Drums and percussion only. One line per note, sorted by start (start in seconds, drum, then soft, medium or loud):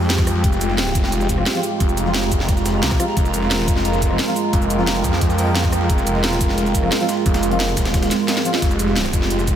0.01 snare soft
0.10 snare loud
0.10 closed hi-hat medium
0.18 kick loud
0.18 cross-stick medium
0.18 snare medium
0.18 cabasa soft
0.27 cross-stick medium
0.27 closed hi-hat medium
0.27 open hi-hat medium
0.27 cabasa medium
0.35 snare soft
0.44 kick loud
0.44 closed hi-hat medium
0.53 snare soft
0.53 cabasa soft
0.61 closed hi-hat medium
0.61 cabasa medium
0.70 snare soft
0.78 snare loud
0.78 closed hi-hat medium
0.87 cross-stick soft
0.87 cabasa soft
0.95 kick loud
0.95 closed hi-hat medium
0.95 cabasa medium
1.04 snare soft
1.12 closed hi-hat medium
1.21 snare soft
1.21 cabasa soft
1.29 kick medium
1.29 closed hi-hat medium
1.29 cabasa medium
1.38 cross-stick soft
1.46 snare loud
1.46 closed hi-hat medium
1.55 closed hi-hat soft
1.55 cabasa soft
1.63 closed hi-hat medium
1.63 open hi-hat medium
1.63 cabasa medium
1.80 kick loud
1.80 closed hi-hat medium
1.80 closed hi-hat loud
1.89 cabasa soft
1.97 closed hi-hat medium
1.97 cabasa medium
2.06 snare soft
2.14 snare loud
2.14 closed hi-hat medium
2.23 cross-stick soft
2.23 cabasa soft
2.31 kick medium
2.31 closed hi-hat medium
2.31 cabasa medium
2.40 snare soft
2.48 kick loud
2.48 closed hi-hat medium
2.57 snare medium
2.57 cabasa soft
2.66 snare loud
2.66 closed hi-hat medium
2.66 cabasa medium
2.74 snare soft
2.83 snare loud
2.83 closed hi-hat medium
2.91 kick loud
2.91 cross-stick medium
2.91 snare medium
2.91 cabasa soft
3.00 cross-stick medium
3.00 closed hi-hat medium
3.00 open hi-hat medium
3.00 cabasa medium
3.08 snare soft
3.17 kick loud
3.17 closed hi-hat medium
3.25 snare soft
3.25 cabasa soft
3.34 closed hi-hat medium
3.34 cabasa medium
3.42 snare soft
3.51 snare loud
3.51 closed hi-hat medium
3.59 cross-stick soft
3.59 cabasa soft
3.68 kick loud
3.68 closed hi-hat medium
3.68 cabasa medium
3.76 snare soft
3.85 closed hi-hat medium
3.93 snare soft
3.93 cabasa soft
4.02 kick medium
4.02 closed hi-hat medium
4.02 cabasa medium
4.11 cross-stick soft
4.19 snare loud
4.19 closed hi-hat medium
4.28 closed hi-hat soft
4.28 cabasa soft
4.36 closed hi-hat medium
4.36 open hi-hat medium
4.36 cabasa medium
4.53 kick loud
4.53 closed hi-hat medium
4.62 cabasa soft
4.70 closed hi-hat medium
4.70 cabasa medium
4.79 snare soft
4.87 snare loud
4.87 closed hi-hat medium
4.96 cross-stick soft
4.96 cabasa soft
5.04 kick medium
5.04 closed hi-hat medium
5.04 closed hi-hat loud
5.04 cabasa medium
5.13 snare soft
5.21 kick loud
5.21 closed hi-hat medium
5.30 snare medium
5.30 cabasa soft
5.38 closed hi-hat medium
5.38 open hi-hat medium
5.38 cabasa medium
5.47 snare soft
5.55 snare loud
5.55 closed hi-hat medium
5.64 kick loud
5.64 cross-stick medium
5.64 snare medium
5.64 cabasa soft
5.72 cross-stick medium
5.72 closed hi-hat medium
5.72 open hi-hat medium
5.72 cabasa medium
5.81 snare soft
5.90 kick loud
5.90 closed hi-hat medium
5.98 snare soft
5.98 cabasa soft
6.07 closed hi-hat medium
6.07 cabasa medium
6.15 snare soft
6.24 snare loud
6.24 closed hi-hat loud
6.24 closed hi-hat medium
6.32 cross-stick soft
6.32 cabasa soft
6.41 kick loud
6.41 closed hi-hat medium
6.41 closed hi-hat loud
6.41 cabasa medium
6.49 snare soft
6.58 closed hi-hat medium
6.66 snare medium
6.66 cabasa soft
6.75 kick medium
6.75 closed hi-hat loud
6.75 closed hi-hat medium
6.75 cabasa medium
6.83 cross-stick soft
6.92 snare loud
6.92 closed hi-hat medium
7.00 closed hi-hat soft
7.00 cabasa soft
7.09 snare loud
7.09 closed hi-hat medium
7.09 open hi-hat medium
7.09 cabasa medium
7.17 snare medium
7.26 kick loud
7.26 closed hi-hat medium
7.34 snare loud
7.34 closed hi-hat medium
7.34 cabasa soft
7.43 snare medium
7.43 closed hi-hat loud
7.43 cabasa medium
7.51 closed hi-hat medium
7.60 snare loud
7.60 closed hi-hat medium
7.68 cross-stick soft
7.68 cabasa soft
7.77 kick medium
7.77 snare loud
7.77 closed hi-hat medium
7.77 closed hi-hat loud
7.77 cabasa medium
7.85 snare soft
7.85 snare loud
7.85 closed hi-hat medium
7.94 kick loud
7.94 snare loud
7.94 closed hi-hat medium
8.02 snare loud
8.02 closed hi-hat medium
8.02 cabasa soft
8.11 snare medium
8.11 closed hi-hat loud
8.11 open hi-hat medium
8.11 cabasa medium
8.20 snare soft
8.28 snare loud
8.28 snare medium
8.28 closed hi-hat medium
8.37 snare medium
8.37 cabasa soft
8.45 closed hi-hat medium
8.45 open hi-hat medium
8.45 cabasa medium
8.54 snare soft
8.54 snare medium
8.62 kick loud
8.62 closed hi-hat loud
8.62 closed hi-hat medium
8.71 snare soft
8.71 cabasa soft
8.79 closed hi-hat medium
8.79 cabasa medium
8.88 snare soft
8.96 snare loud
8.96 closed hi-hat medium
9.05 cross-stick soft
9.05 cabasa soft
9.13 kick loud
9.13 closed hi-hat medium
9.13 closed hi-hat loud
9.13 cabasa medium
9.22 snare soft
9.30 closed hi-hat medium
9.39 snare soft
9.39 cabasa soft
9.47 kick medium
9.47 closed hi-hat medium
9.47 cabasa medium